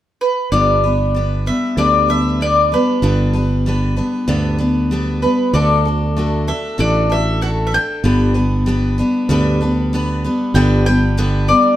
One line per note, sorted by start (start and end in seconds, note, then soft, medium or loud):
0.21 0.51 B4 medium
0.52 1.49 G1 medium
0.52 0.83 G2 medium
0.52 0.84 D3 medium
0.52 0.84 G3 medium
0.52 0.84 B3 medium
0.52 0.83 D4 medium
0.52 0.83 B4 medium
0.52 1.49 D5 medium
0.84 1.13 G3 soft
0.84 1.15 B3 soft
0.84 1.15 D4 soft
0.84 1.15 B4 soft
1.15 1.46 G3 medium
1.15 1.47 B3 medium
1.15 1.46 D4 medium
1.15 1.45 B4 medium
1.46 1.76 G3 soft
1.46 1.77 B3 soft
1.46 1.77 D4 soft
1.46 1.77 B4 soft
1.46 1.79 E5 medium
1.77 2.75 D2 medium
1.77 2.09 G2 medium
1.77 2.09 D3 medium
1.77 2.09 G3 medium
1.77 2.09 B3 medium
1.77 2.08 D4 medium
1.77 2.07 B4 medium
1.77 2.10 D5 medium
2.08 2.40 G3 soft
2.08 2.41 B3 soft
2.08 2.40 D4 soft
2.08 2.40 B4 soft
2.08 2.42 E5 medium
2.41 2.72 G3 soft
2.41 2.72 B3 soft
2.41 2.72 D4 medium
2.41 2.71 B4 medium
2.41 2.73 D5 medium
2.72 3.02 G3 soft
2.72 3.02 B3 soft
2.72 3.02 D4 soft
2.72 3.03 B4 soft
2.72 4.57 B4 medium
3.02 4.00 G1 medium
3.02 3.34 G2 medium
3.02 3.34 D3 medium
3.02 3.34 G3 medium
3.02 3.34 B3 medium
3.02 3.33 D4 medium
3.02 3.32 B4 medium
3.33 3.65 G3 soft
3.33 3.66 B3 soft
3.33 3.66 D4 soft
3.33 3.65 B4 soft
3.66 3.97 G3 medium
3.66 3.97 B3 medium
3.66 3.96 D4 medium
3.66 3.95 B4 medium
3.96 4.27 G3 soft
3.96 4.27 B3 soft
3.96 4.28 D4 soft
3.96 4.27 B4 soft
4.28 5.25 D2 medium
4.28 4.59 G2 medium
4.28 4.59 D3 medium
4.28 4.59 G3 medium
4.28 4.59 B3 medium
4.28 4.58 D4 medium
4.28 4.57 B4 medium
4.58 4.90 G3 soft
4.58 4.91 B3 soft
4.58 4.91 D4 soft
4.58 4.90 B4 medium
4.91 5.22 G3 medium
4.91 5.23 B3 medium
4.91 5.22 D4 medium
4.91 5.21 B4 medium
5.22 5.54 G3 soft
5.22 5.54 B3 soft
5.22 5.53 D4 soft
5.22 5.53 B4 soft
5.22 5.53 B4 medium
5.53 6.51 D2 medium
5.53 5.85 D3 medium
5.53 5.85 A3 medium
5.53 5.85 D4 medium
5.53 5.85 F#4 medium
5.53 5.84 A4 medium
5.53 6.50 D5 medium
5.85 6.17 D4 soft
5.85 6.17 F#4 soft
5.85 6.16 A4 soft
6.17 6.48 A3 medium
6.17 6.48 D4 medium
6.17 6.47 F#4 medium
6.17 6.46 A4 medium
6.47 6.78 D4 soft
6.47 6.78 F#4 soft
6.47 6.79 A4 soft
6.47 6.80 E5 medium
6.78 7.77 A1 medium
6.78 7.10 D3 medium
6.78 7.10 A3 medium
6.78 7.10 D4 medium
6.78 7.10 F#4 medium
6.78 7.08 A4 medium
6.78 7.12 D5 medium
7.10 7.41 D4 soft
7.10 7.41 F#4 soft
7.10 7.41 A4 soft
7.10 7.42 E5 medium
7.41 7.73 A3 medium
7.41 7.73 D4 medium
7.41 7.73 F#4 medium
7.41 7.71 A4 medium
7.41 7.49 F#5 medium
7.67 7.73 E5 medium
7.72 8.04 D4 soft
7.72 8.04 A4 soft
7.72 9.58 G5 medium
8.04 9.01 G1 medium
8.04 8.35 G2 medium
8.04 8.35 D3 medium
8.04 8.35 G3 medium
8.04 8.35 B3 medium
8.04 8.34 D4 medium
8.04 8.33 B4 medium
8.34 8.65 G3 soft
8.34 8.66 B3 soft
8.34 8.67 D4 soft
8.34 8.66 B4 soft
8.66 8.98 G3 medium
8.66 8.98 B3 medium
8.66 8.98 D4 medium
8.66 8.97 B4 medium
8.98 9.29 G3 soft
8.98 9.29 B3 soft
8.98 9.29 D4 medium
8.98 9.29 B4 medium
9.29 10.27 D2 medium
9.29 9.61 G2 medium
9.29 9.61 D3 medium
9.29 9.61 G3 medium
9.29 9.61 B3 medium
9.29 9.60 D4 medium
9.29 9.59 B4 medium
9.61 9.92 G3 soft
9.61 9.93 B3 soft
9.61 9.93 D4 medium
9.61 9.92 B4 medium
9.93 10.24 G3 medium
9.93 10.24 B3 medium
9.93 10.24 D4 medium
9.93 10.23 B4 medium
10.24 10.54 G3 soft
10.24 10.55 B3 soft
10.24 10.55 D4 soft
10.24 10.55 B4 medium
10.54 11.52 G1 medium
10.54 10.86 G2 medium
10.54 10.86 D3 medium
10.54 10.86 G3 medium
10.54 10.87 B3 medium
10.54 10.86 D4 medium
10.54 10.85 B4 medium
10.54 10.84 G5 loud
10.86 11.17 G3 soft
10.86 11.17 B3 soft
10.86 11.17 D4 soft
10.86 11.17 B4 soft
10.86 11.45 G5 medium
11.17 11.49 G2 medium
11.17 11.49 D3 medium
11.17 11.49 G3 medium
11.17 11.49 B3 medium
11.17 11.48 D4 medium
11.17 11.47 B4 medium
11.48 11.76 G3 soft
11.48 11.76 B3 soft
11.48 11.76 D4 soft
11.48 11.76 B4 soft
11.48 11.76 D5 medium